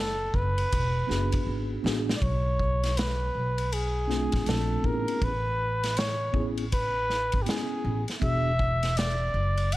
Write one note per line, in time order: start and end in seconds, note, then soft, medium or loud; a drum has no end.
0.00 0.30 F#1 loud
0.00 0.37 A4 medium
0.34 0.63 F#1 medium
0.34 1.85 B4 medium
0.34 kick medium
0.58 ride medium
0.72 1.01 E1 medium
0.72 kick medium
0.72 ride medium
1.07 1.38 F#1 medium
1.07 1.81 B3 medium
1.07 1.83 D4 medium
1.07 1.84 F#4 medium
1.07 1.85 G#4 medium
1.07 snare soft
1.32 kick medium
1.32 ride medium
1.47 1.75 G#1 medium
1.83 2.13 A1 medium
1.83 2.12 B3 medium
1.83 2.13 D4 medium
1.83 2.14 F#4 medium
1.83 2.14 G#4 medium
1.83 snare medium
2.09 snare medium
2.17 2.24 D5 medium
2.22 3.30 B1 loud
2.22 2.99 C#5 medium
2.22 kick loud
2.22 ride medium
2.59 kick medium
2.84 snare soft
2.84 ride medium
2.97 3.75 B4 medium
2.97 snare loud
2.97 hi-hat pedal soft
2.97 ride medium
3.35 4.29 B1 medium
3.58 ride medium
3.72 4.49 G#4 medium
3.72 ride medium
4.07 5.17 A3 medium
4.07 5.15 C4 medium
4.07 5.16 D4 medium
4.07 5.16 F4 medium
4.07 snare soft
4.32 4.44 A1 medium
4.32 kick medium
4.32 snare soft
4.32 ride medium
4.46 4.75 A#1 medium
4.46 4.88 A4 medium
4.46 snare loud
4.46 hi-hat pedal soft
4.46 ride medium
4.82 5.02 A1 medium
4.82 5.30 B3 medium
4.82 5.31 C#4 medium
4.82 5.31 E4 medium
4.82 5.32 G#4 medium
4.82 5.26 A#4 medium
4.82 kick medium
5.08 ride soft
5.22 6.30 A1 loud
5.22 6.00 B4 loud
5.22 kick loud
5.22 ride medium
5.83 snare soft
5.83 ride medium
5.97 6.48 C#5 medium
5.97 snare loud
5.97 hi-hat pedal soft
5.97 ride medium
6.32 7.29 A1 medium
6.32 6.62 B3 medium
6.32 6.63 C#4 medium
6.32 6.64 E4 medium
6.32 6.64 G#4 medium
6.32 kick medium
6.57 ride medium
6.72 7.44 B4 medium
6.72 kick medium
6.72 ride medium
7.10 snare soft
7.32 7.44 G#1 medium
7.32 kick medium
7.32 ride medium
7.42 8.02 B3 medium
7.42 7.49 G4 medium
7.42 hi-hat pedal soft
7.42 ride medium
7.46 8.03 C#4 medium
7.46 8.03 E4 medium
7.46 8.08 G#4 medium
7.46 8.04 G#4 medium
7.46 snare medium
7.84 8.02 A1 medium
8.08 snare soft
8.08 ride soft
8.20 9.30 E1 loud
8.20 8.50 B3 medium
8.20 8.50 D4 medium
8.20 8.51 F#4 medium
8.20 8.52 G#4 medium
8.20 8.99 E5 loud
8.20 kick loud
8.20 ride medium
8.59 kick medium
8.83 snare soft
8.83 ride medium
8.97 9.75 D5 medium
8.97 snare loud
8.97 hi-hat pedal soft
8.97 ride medium
9.34 9.77 F#1 medium
9.57 ride soft
9.72 9.77 F#5 loud
9.72 ride medium